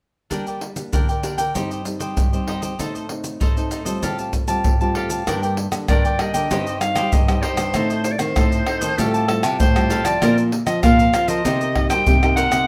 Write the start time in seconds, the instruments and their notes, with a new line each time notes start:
0.30 nylon-string guitar G3 A#3 D4 G4, cavaquinho D4 A#4 D5 G5, pandeiro, maracas, surdo
0.46 cavaquinho A#4 D5 G5, pandeiro, maracas
0.61 muted cavaquinho stroke, pandeiro
0.76 nylon-string guitar A#3 D4 G4, pandeiro, maracas
0.92 nylon-string guitar D3, cavaquinho D4 A#4 D5 G5, pandeiro, maracas, surdo
1.09 cavaquinho A#4 D5 G5, pandeiro, maracas
1.23 nylon-string guitar A#3 D4 G4, cavaquinho D4 A#4 D5 G5, pandeiro, maracas
1.38 cavaquinho A#4 D5 G5, pandeiro, maracas
1.55 nylon-string guitar G2 G3 C4 D#4, cavaquinho D#4 G4 C5 D#5, pandeiro, maracas, surdo
1.70 cavaquinho G4 C5 D#5, pandeiro, maracas
1.85 nylon-string guitar G3 C4 D#4, muted cavaquinho stroke, pandeiro, maracas
1.99 cavaquinho G4 C5 D#5, pandeiro, maracas
2.17 nylon-string guitar G2, pandeiro, maracas, surdo
2.33 nylon-string guitar G3 C4 D#4, cavaquinho G4 C5 D#5, pandeiro, maracas
2.47 cavaquinho D#4 G4 C5 D#5, pandeiro
2.62 cavaquinho G4 C5 D#5, pandeiro, maracas
2.79 nylon-string guitar A2 A3 C4 D#4, cavaquinho D#4 A4 C5 D#5, pandeiro, maracas, surdo
2.94 cavaquinho A4 C5 D#5, pandeiro, maracas
3.09 nylon-string guitar A3 C4 D#4, muted cavaquinho stroke, pandeiro
3.24 pandeiro, maracas
3.40 nylon-string guitar A2, cavaquinho D#4 A4 C5 D#5, pandeiro, maracas, surdo
3.56 nylon-string guitar A3 C4 D#4, cavaquinho A4 C5 D#5, pandeiro, maracas
3.71 cavaquinho D#4 A4 C5 D#5, pandeiro, maracas
3.85 nylon-string guitar G3 C4 F4, cavaquinho A4 C5 D#5, pandeiro, maracas
4.02 nylon-string guitar A2, cavaquinho G4 A4 F5 A5, pandeiro, maracas, surdo
4.19 cavaquinho G4 F5 A5, pandeiro, maracas
4.33 muted cavaquinho stroke, pandeiro, maracas, surdo
4.48 nylon-string guitar G3 C4 F4, cavaquinho G4 F5 A5, pandeiro, maracas
4.64 nylon-string guitar A2, pandeiro, maracas, surdo
4.81 nylon-string guitar G3 C4 F4, cavaquinho G4 F5 A5, pandeiro, maracas
4.95 cavaquinho G4 A4 F5 A5, pandeiro
5.10 cavaquinho G4 F5 A5, pandeiro, maracas
5.27 nylon-string guitar G2 G3 A#3 D4, cavaquinho D4 A#4 D5 G5, pandeiro, tamborim, maracas, surdo
5.42 cavaquinho A#4 D5 G5, pandeiro, maracas
5.57 muted cavaquinho stroke, pandeiro
5.72 nylon-string guitar D3 G3 A#3 D4, pandeiro, tamborim, maracas
5.88 nylon-string guitar G2 D3, cavaquinho D4 A#4 D5 G5, clarinet D5, pandeiro, tamborim, maracas, surdo
6.05 cavaquinho A#4 D5 G5, pandeiro, maracas
6.19 nylon-string guitar G3 A#3 D4, cavaquinho D4 A#4 D5 G5, clarinet D#5, pandeiro, tamborim
6.34 nylon-string guitar D3, cavaquinho A#4 D5 G5, pandeiro, maracas
6.50 nylon-string guitar G2 G3 C4 D#4, cavaquinho D#4 G4 C5 D#5, pandeiro, maracas, surdo
6.67 cavaquinho G4 C5 D#5, pandeiro, maracas
6.81 nylon-string guitar G3 C4 D#4, clarinet F5, muted cavaquinho stroke, pandeiro, tamborim, maracas
6.95 nylon-string guitar G3, cavaquinho G4 C5 D#5, pandeiro, tamborim, maracas
7.13 nylon-string guitar G2, clarinet D#5, pandeiro, maracas, surdo
7.28 nylon-string guitar G3 C4 D#4, cavaquinho G4 C5 D#5, pandeiro, tamborim, maracas
7.42 cavaquinho D#4 G4 C5 D#5, clarinet C5, pandeiro
7.57 nylon-string guitar G2, cavaquinho G4 C5 D#5, pandeiro, tamborim, maracas
7.74 nylon-string guitar A2 A3 C4 D#4, cavaquinho D#4 A4 C5 D#5, pandeiro, tamborim, maracas, surdo
7.90 cavaquinho A4 C5 D#5, pandeiro, maracas
8.04 clarinet C5, muted cavaquinho stroke, pandeiro, maracas
8.12 clarinet D5
8.19 nylon-string guitar D#3 A3 C4 D#4, clarinet C5, pandeiro, tamborim, maracas
8.36 nylon-string guitar A2, cavaquinho D#4 A4 C5 D#5, pandeiro, tamborim, maracas, surdo
8.52 cavaquinho A4 C5 D#5, pandeiro, maracas
8.66 nylon-string guitar A3 C4 D#4, cavaquinho D#4 A4 C5 D#5, pandeiro, tamborim
8.81 nylon-string guitar D#3, cavaquinho A4 C5 D#5, pandeiro, maracas
8.98 nylon-string guitar A2 G3 C4 F4, cavaquinho G4 A4 F5 A5, clarinet A4, pandeiro, maracas, surdo
9.14 cavaquinho G4 F5 A5, pandeiro, maracas
9.28 nylon-string guitar G3 C4 F4, clarinet A4, muted cavaquinho stroke, pandeiro, tamborim
9.43 nylon-string guitar C3, cavaquinho G4 F5 A5, pandeiro, tamborim, maracas
9.60 nylon-string guitar A2, clarinet C5, pandeiro, maracas, surdo
9.75 nylon-string guitar G3 C4 F4, cavaquinho G4 F5 A5, pandeiro, tamborim, maracas
9.90 cavaquinho G4 A4 F5 A5, pandeiro, maracas
10.05 nylon-string guitar F3, cavaquinho G4 F5 A5, clarinet D5, pandeiro, tamborim, maracas
10.21 nylon-string guitar A#2 F3 C4 F4, cavaquinho F4 A#4 C5 F5, pandeiro, tamborim, maracas, surdo
10.37 cavaquinho A#4 C5 F5, pandeiro, maracas
10.52 muted cavaquinho stroke, pandeiro
10.67 nylon-string guitar F3 C4 F4, clarinet D#5, pandeiro, tamborim, maracas
10.83 nylon-string guitar A#2, cavaquinho F4 A#4 C5 F5, clarinet F5, pandeiro, tamborim, maracas, surdo
10.99 cavaquinho A#4 C5 F5, pandeiro, maracas
11.13 nylon-string guitar F3 C4 F4, cavaquinho F4 A#4 C5 F5, pandeiro, tamborim, maracas
11.28 nylon-string guitar F3, cavaquinho A#4 C5 F5, clarinet D#5, pandeiro, maracas
11.45 nylon-string guitar C3 A#3 D#4 G4, cavaquinho D#4 A#4 C5 D#5, pandeiro, maracas, surdo
11.61 cavaquinho A#4 C5 D#5, pandeiro, maracas
11.75 nylon-string guitar A#3 D#4 G4, muted cavaquinho stroke, pandeiro, tamborim, surdo
11.90 nylon-string guitar G3, cavaquinho A#4 C5 D#5, clarinet G5, pandeiro, tamborim, maracas
12.07 nylon-string guitar G2 C3 A#3 D#4 G4, pandeiro, maracas, surdo
12.22 nylon-string guitar A#3 D#4 G4, cavaquinho A#4 C5 D#5, pandeiro, tamborim, maracas
12.37 cavaquinho D#4 A#4 C5 D#5, clarinet F#5, pandeiro, maracas
12.51 nylon-string guitar C3, cavaquinho A#4 C5 D#5, pandeiro, tamborim, maracas